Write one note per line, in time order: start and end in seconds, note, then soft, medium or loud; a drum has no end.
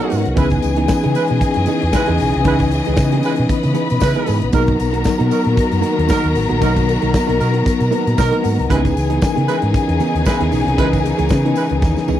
0.00 0.34 D#3 medium
0.00 0.20 F#3 medium
0.00 0.39 F#3 medium
0.00 0.40 B3 medium
0.00 0.35 C#4 medium
0.00 0.20 D#4 loud
0.00 0.37 D#4 medium
0.00 0.33 F#4 medium
0.00 0.34 F#4 medium
0.00 0.39 G#4 medium
0.00 0.20 A#4 loud
0.00 0.34 A#4 medium
0.00 0.40 A#4 loud
0.00 0.39 C#5 medium
0.00 0.39 D#5 medium
0.00 0.33 F#5 loud
0.09 0.24 G#2 medium
0.09 0.26 F#3 medium
0.09 0.24 A#3 medium
0.09 0.23 D#4 medium
0.09 0.23 F#4 medium
0.09 0.35 B4 medium
0.09 open hi-hat medium
0.09 tambourine medium
0.24 0.36 C2 medium
0.24 muted clean electric guitar stroke soft
0.24 closed hi-hat soft
0.36 0.59 C#2 loud
0.36 4.50 C#3 medium
0.36 0.61 E3 medium
0.36 0.77 E3 medium
0.36 4.50 E3 medium
0.36 0.47 G#3 medium
0.36 0.61 B3 medium
0.36 12.20 B3 medium
0.36 0.77 C#4 medium
0.36 0.61 D#4 medium
0.36 0.78 D#4 medium
0.36 0.47 E4 medium
0.36 0.61 G#4 loud
0.36 3.46 G#4 medium
0.36 0.46 B4 loud
0.36 0.78 B4 loud
0.36 4.50 D#5 medium
0.36 3.46 G#5 loud
0.36 kick loud
0.36 closed hi-hat medium
0.36 tambourine medium
0.50 kick medium
0.50 closed hi-hat soft
0.50 tambourine soft
0.62 0.86 C#2 loud
0.62 muted clean electric guitar stroke soft
0.62 closed hi-hat medium
0.62 tambourine medium
0.76 0.88 E3 medium
0.76 0.88 B3 medium
0.76 0.88 D#4 medium
0.76 0.87 G#4 medium
0.76 closed hi-hat soft
0.88 1.67 E3 medium
0.88 1.67 C#4 medium
0.88 1.67 D#4 medium
0.88 1.67 B4 loud
0.88 muted fingered electric bass stroke soft
0.88 kick loud
0.88 snare loud
0.88 tambourine medium
1.03 1.14 C#3 loud
1.03 1.14 E3 medium
1.03 1.15 B3 medium
1.03 1.15 D#4 medium
1.03 1.16 G#4 medium
1.03 closed hi-hat soft
1.15 1.25 G#3 medium
1.15 1.25 E4 medium
1.15 1.25 B4 medium
1.15 muted clean electric guitar stroke soft
1.15 closed hi-hat medium
1.15 tambourine medium
1.28 1.40 B2 medium
1.28 muted clean electric guitar stroke soft
1.28 closed hi-hat soft
1.41 muted clean electric guitar stroke soft
1.41 kick loud
1.41 closed hi-hat medium
1.41 tambourine medium
1.54 1.66 F#2 medium
1.54 muted clean electric guitar stroke soft
1.54 closed hi-hat soft
1.54 tambourine soft
1.66 1.83 E3 medium
1.66 1.82 B3 medium
1.66 1.82 D#4 medium
1.66 1.81 G#4 loud
1.66 closed hi-hat medium
1.66 tambourine soft
1.82 1.92 E2 medium
1.82 muted clean electric guitar stroke soft
1.82 closed hi-hat soft
1.93 2.10 G#3 medium
1.93 2.10 E4 medium
1.93 2.10 B4 loud
1.93 muted clean electric guitar stroke soft
1.93 kick loud
1.93 snare loud
1.93 tambourine loud
2.06 2.18 E2 loud
2.06 2.18 E3 medium
2.06 2.19 B3 medium
2.06 2.19 D#4 medium
2.06 2.19 G#4 medium
2.06 closed hi-hat soft
2.18 2.32 B1 medium
2.18 2.32 E3 medium
2.18 2.33 D#4 medium
2.18 2.33 G#4 medium
2.18 open hi-hat medium
2.18 tambourine medium
2.34 2.45 C2 medium
2.34 muted clean electric guitar stroke soft
2.34 closed hi-hat soft
2.44 2.79 C#2 loud
2.44 2.85 E3 loud
2.44 2.69 E3 medium
2.44 2.55 G#3 medium
2.44 2.70 B3 medium
2.44 2.85 C#4 medium
2.44 2.86 D#4 medium
2.44 2.70 D#4 medium
2.44 2.55 E4 loud
2.44 2.70 G#4 medium
2.44 2.86 B4 medium
2.44 2.55 B4 loud
2.44 kick loud
2.44 closed hi-hat medium
2.44 tambourine medium
2.59 kick medium
2.59 closed hi-hat soft
2.59 tambourine soft
2.72 closed hi-hat medium
2.72 tambourine medium
2.85 2.97 C#2 loud
2.85 2.97 E3 medium
2.85 2.97 B3 medium
2.85 2.97 D#4 medium
2.85 2.97 G#4 medium
2.85 closed hi-hat medium
2.85 tambourine soft
2.96 3.19 C#3 loud
2.96 3.74 E3 medium
2.96 3.75 C#4 medium
2.96 3.75 D#4 medium
2.96 3.75 B4 medium
2.96 muted clean electric guitar stroke soft
2.96 kick loud
2.96 snare loud
2.96 tambourine medium
3.12 3.23 E3 medium
3.12 3.23 B3 medium
3.12 3.23 D#4 medium
3.12 3.23 G#4 medium
3.12 closed hi-hat soft
3.23 3.33 G#3 medium
3.23 3.33 E4 medium
3.23 3.33 B4 medium
3.23 closed hi-hat medium
3.23 tambourine medium
3.36 3.48 B2 medium
3.36 muted clean electric guitar stroke soft
3.36 closed hi-hat soft
3.49 4.52 B4 medium
3.49 4.52 B5 medium
3.49 muted clean electric guitar stroke soft
3.49 muted fingered electric bass stroke soft
3.49 kick loud
3.49 closed hi-hat medium
3.49 tambourine medium
3.63 3.74 C#3 medium
3.63 muted clean electric guitar stroke soft
3.63 closed hi-hat soft
3.63 tambourine soft
3.74 3.90 E3 medium
3.74 3.88 B3 medium
3.74 3.88 D#4 medium
3.74 3.88 G#4 medium
3.74 closed hi-hat medium
3.74 tambourine soft
3.89 4.00 B2 loud
3.89 muted clean electric guitar stroke soft
3.89 closed hi-hat soft
3.89 tambourine soft
4.00 4.14 C#3 loud
4.00 4.36 G#3 medium
4.00 4.36 E4 medium
4.00 4.37 B4 loud
4.00 muted clean electric guitar stroke soft
4.00 kick loud
4.00 snare loud
4.00 tambourine loud
4.15 4.26 E3 soft
4.15 4.26 B3 medium
4.15 4.26 D#4 medium
4.15 4.26 G#4 soft
4.15 closed hi-hat soft
4.26 4.40 G#2 medium
4.26 4.43 E3 medium
4.26 4.41 B3 medium
4.26 4.40 D#4 medium
4.26 4.40 G#4 medium
4.26 open hi-hat medium
4.26 tambourine medium
4.41 4.52 A#1 medium
4.41 muted clean electric guitar stroke soft
4.41 closed hi-hat soft
4.52 4.75 B1 loud
4.52 8.66 D#3 medium
4.52 4.93 F#3 medium
4.52 4.63 F#3 medium
4.52 4.77 A#3 medium
4.52 4.94 B3 medium
4.52 4.94 D#4 medium
4.52 4.63 D#4 medium
4.52 4.78 D#4 medium
4.52 4.78 F#4 medium
4.52 8.66 F#4 medium
4.52 4.61 G#4 medium
4.52 8.66 A#4 medium
4.52 4.63 A#4 loud
4.52 4.78 A#4 medium
4.52 8.66 A#5 medium
4.52 kick loud
4.52 closed hi-hat medium
4.52 tambourine medium
4.60 4.97 A#4 loud
4.67 kick medium
4.67 closed hi-hat soft
4.78 5.02 B1 medium
4.78 muted clean electric guitar stroke soft
4.78 closed hi-hat medium
4.78 tambourine medium
4.93 5.03 A#3 medium
4.93 5.03 D#4 medium
4.93 5.04 F#4 medium
4.93 5.03 A#4 medium
4.93 closed hi-hat medium
4.93 tambourine soft
5.04 5.83 F#3 medium
5.04 5.83 B3 medium
5.04 5.83 D#4 medium
5.04 5.84 A#4 loud
5.04 muted fingered electric bass stroke soft
5.04 kick loud
5.04 snare loud
5.04 tambourine medium
5.18 5.30 B2 loud
5.18 5.29 A#3 medium
5.18 5.29 D#4 medium
5.18 5.29 F#4 medium
5.18 5.30 A#4 medium
5.18 closed hi-hat soft
5.31 5.41 F#3 medium
5.31 5.41 D#4 medium
5.31 5.41 A#4 medium
5.31 closed hi-hat medium
5.31 tambourine medium
5.44 5.56 A#2 medium
5.44 muted clean electric guitar stroke medium
5.44 closed hi-hat soft
5.55 muted clean electric guitar stroke soft
5.55 kick loud
5.55 closed hi-hat medium
5.55 tambourine medium
5.70 5.82 F#2 medium
5.70 muted clean electric guitar stroke soft
5.70 closed hi-hat soft
5.70 tambourine soft
5.81 5.98 A#3 medium
5.81 5.96 D#4 medium
5.81 5.95 F#4 medium
5.81 5.95 A#4 loud
5.81 closed hi-hat medium
5.81 tambourine medium
5.96 6.08 D#2 medium
5.96 muted clean electric guitar stroke medium
5.96 closed hi-hat soft
6.08 6.27 F#3 medium
6.08 6.25 A#3 medium
6.08 6.24 D#4 medium
6.08 6.27 D#4 medium
6.08 6.23 F#4 medium
6.08 6.23 A#4 medium
6.08 6.27 A#4 loud
6.08 kick loud
6.08 snare loud
6.08 tambourine loud
6.24 6.34 D#2 medium
6.24 muted clean electric guitar stroke soft
6.24 closed hi-hat soft
6.35 6.48 A1 medium
6.35 muted clean electric guitar stroke soft
6.35 open hi-hat medium
6.35 tambourine medium
6.49 6.62 A#1 medium
6.49 6.59 A#3 medium
6.49 6.60 D#4 medium
6.49 6.60 F#4 medium
6.49 6.60 A#4 medium
6.49 closed hi-hat soft
6.60 6.96 B1 loud
6.60 7.02 F#3 loud
6.60 6.71 F#3 medium
6.60 6.85 A#3 medium
6.60 7.02 B3 medium
6.60 6.86 D#4 medium
6.60 7.02 D#4 medium
6.60 6.71 D#4 medium
6.60 6.86 F#4 medium
6.60 6.86 A#4 medium
6.60 6.71 A#4 medium
6.60 7.03 A#4 medium
6.60 kick loud
6.60 closed hi-hat medium
6.60 tambourine medium
6.77 kick medium
6.77 closed hi-hat soft
6.77 tambourine soft
6.89 closed hi-hat medium
6.89 tambourine medium
7.02 7.12 B1 medium
7.02 7.12 A#3 medium
7.02 7.12 D#4 medium
7.02 7.12 F#4 medium
7.02 7.12 A#4 medium
7.02 closed hi-hat soft
7.13 7.91 F#3 medium
7.13 7.91 B3 medium
7.13 7.91 D#4 medium
7.13 7.92 A#4 loud
7.13 kick loud
7.13 snare loud
7.13 tambourine medium
7.27 7.38 B1 medium
7.27 7.37 A#3 medium
7.27 7.37 D#4 medium
7.27 7.38 F#4 medium
7.27 7.38 A#4 medium
7.27 closed hi-hat soft
7.39 7.62 B2 loud
7.39 7.49 F#3 medium
7.39 7.49 D#4 medium
7.39 7.49 A#4 medium
7.39 muted clean electric guitar stroke soft
7.39 closed hi-hat medium
7.39 tambourine medium
7.53 muted clean electric guitar stroke medium
7.53 closed hi-hat soft
7.66 muted clean electric guitar stroke soft
7.66 muted fingered electric bass stroke soft
7.66 kick loud
7.66 closed hi-hat medium
7.66 tambourine medium
7.80 7.90 B2 medium
7.80 muted clean electric guitar stroke soft
7.80 closed hi-hat soft
7.80 tambourine soft
7.91 8.07 A#3 medium
7.91 8.06 D#4 medium
7.91 8.05 F#4 medium
7.91 8.05 A#4 medium
7.91 8.16 B4 medium
7.91 closed hi-hat medium
7.91 tambourine soft
8.06 8.16 A#2 medium
8.06 muted clean electric guitar stroke medium
8.06 closed hi-hat soft
8.06 tambourine soft
8.16 8.31 B2 loud
8.16 8.35 F#3 medium
8.16 8.35 D#4 medium
8.16 8.35 A#4 loud
8.16 8.42 D#5 medium
8.16 muted clean electric guitar stroke medium
8.16 kick loud
8.16 snare loud
8.16 tambourine loud
8.31 8.42 A#3 soft
8.31 8.42 D#4 medium
8.31 8.42 F#4 medium
8.31 8.42 A#4 medium
8.31 closed hi-hat soft
8.43 8.57 G#2 medium
8.43 8.59 A#3 medium
8.43 8.58 D#4 medium
8.43 8.58 F#4 medium
8.43 8.57 A#4 medium
8.43 8.68 F#5 medium
8.43 open hi-hat medium
8.43 tambourine medium
8.58 8.68 C2 medium
8.58 muted clean electric guitar stroke medium
8.58 closed hi-hat soft
8.69 8.92 C#2 loud
8.69 12.20 C#3 medium
8.69 9.10 E3 medium
8.69 8.94 E3 loud
8.69 12.20 E3 medium
8.69 8.80 G#3 medium
8.69 8.94 B3 medium
8.69 9.11 C#4 medium
8.69 12.20 D#4 medium
8.69 8.94 D#4 medium
8.69 9.11 D#4 medium
8.69 8.79 E4 loud
8.69 12.20 G#4 medium
8.69 8.95 G#4 medium
8.69 8.79 B4 loud
8.69 9.11 B4 loud
8.69 12.20 G#5 medium
8.69 kick loud
8.69 closed hi-hat medium
8.69 tambourine medium
8.85 kick medium
8.85 closed hi-hat soft
8.85 tambourine soft
8.96 9.18 C#2 medium
8.96 muted clean electric guitar stroke soft
8.96 closed hi-hat medium
8.96 tambourine medium
9.10 9.20 E3 medium
9.10 9.21 B3 medium
9.10 9.20 D#4 medium
9.10 9.20 G#4 medium
9.10 closed hi-hat medium
9.21 9.99 E3 medium
9.21 10.00 C#4 medium
9.21 10.00 D#4 medium
9.21 10.00 A#4 loud
9.21 muted clean electric guitar stroke soft
9.21 muted fingered electric bass stroke soft
9.21 kick loud
9.21 snare loud
9.21 tambourine medium
9.36 9.47 C#3 medium
9.36 9.46 E3 medium
9.36 9.46 B3 medium
9.36 9.47 D#4 medium
9.36 9.47 G#4 medium
9.36 closed hi-hat soft
9.47 9.57 G#3 medium
9.47 9.57 E4 medium
9.47 9.57 B4 medium
9.47 muted clean electric guitar stroke soft
9.47 closed hi-hat medium
9.47 tambourine medium
9.62 9.72 G#2 medium
9.62 muted clean electric guitar stroke soft
9.62 closed hi-hat soft
9.73 muted clean electric guitar stroke soft
9.73 kick loud
9.73 closed hi-hat medium
9.73 tambourine medium
9.88 9.98 E2 medium
9.88 muted clean electric guitar stroke soft
9.88 closed hi-hat soft
10.00 10.16 E3 medium
10.00 10.15 B3 medium
10.00 10.15 D#4 loud
10.00 10.14 G#4 loud
10.00 closed hi-hat medium
10.00 tambourine medium
10.15 10.24 D#2 medium
10.15 closed hi-hat soft
10.25 10.43 G#3 medium
10.25 10.43 E4 medium
10.25 10.43 B4 medium
10.25 muted clean electric guitar stroke medium
10.25 kick loud
10.25 snare loud
10.25 tambourine loud
10.40 10.50 D#2 medium
10.40 10.50 E3 soft
10.40 10.51 B3 medium
10.40 10.51 D#4 medium
10.40 10.50 G#4 medium
10.40 closed hi-hat soft
10.52 10.64 B1 loud
10.52 10.68 E3 medium
10.52 10.67 B3 medium
10.52 10.67 D#4 medium
10.52 10.66 G#4 medium
10.52 open hi-hat medium
10.52 tambourine medium
10.67 10.79 C2 loud
10.67 muted clean electric guitar stroke medium
10.67 closed hi-hat medium
10.77 11.12 C#2 loud
10.77 11.18 E3 medium
10.77 11.02 E3 medium
10.77 10.87 G#3 medium
10.77 11.03 B3 medium
10.77 11.18 C#4 medium
10.77 11.18 D#4 medium
10.77 11.03 D#4 medium
10.77 10.87 E4 medium
10.77 11.03 G#4 loud
10.77 10.85 A#4 medium
10.77 10.87 B4 loud
10.77 kick loud
10.77 closed hi-hat medium
10.77 tambourine medium
10.85 11.22 B4 loud
10.93 kick medium
10.93 closed hi-hat soft
10.93 tambourine soft
11.04 muted clean electric guitar stroke soft
11.04 closed hi-hat medium
11.04 tambourine medium
11.18 11.28 C#2 medium
11.18 11.29 E3 medium
11.18 11.28 B3 medium
11.18 11.28 D#4 medium
11.18 11.28 G#4 medium
11.18 closed hi-hat soft
11.18 tambourine soft
11.29 11.52 C#3 loud
11.29 12.07 E3 medium
11.29 12.07 C#4 medium
11.29 12.08 D#4 medium
11.29 12.08 B4 medium
11.29 kick loud
11.29 snare loud
11.29 tambourine medium
11.45 11.56 E3 medium
11.45 11.56 B3 medium
11.45 11.56 D#4 medium
11.45 11.56 G#4 medium
11.45 closed hi-hat soft
11.56 11.65 G#3 medium
11.56 11.65 E4 medium
11.56 11.65 B4 medium
11.56 closed hi-hat medium
11.56 tambourine medium
11.70 11.80 C#2 medium
11.70 muted clean electric guitar stroke medium
11.70 closed hi-hat soft
11.82 11.94 D#2 medium
11.82 muted clean electric guitar stroke soft
11.82 kick loud
11.82 snare medium
11.82 tambourine medium
11.96 muted clean electric guitar stroke soft
11.96 snare medium
11.96 tambourine soft
12.08 12.20 C#2 medium
12.08 12.20 E3 medium
12.08 12.20 B3 medium
12.08 12.20 D#4 medium
12.08 12.20 G#4 medium
12.08 high tom medium
12.08 tambourine medium